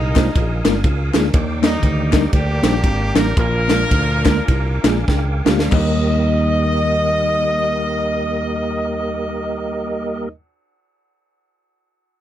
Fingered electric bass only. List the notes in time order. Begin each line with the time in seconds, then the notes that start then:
Already playing: C2
0.36 A#1
0.65 G1
0.84 C#2
1.14 D2
1.34 D#2
1.83 D2
2.33 D2
2.63 A#1
2.84 G#1
3.16 A1
3.37 A#1
3.91 D2
4.48 C2
4.84 A#1
5.08 C#2
5.46 D2
5.72 D#2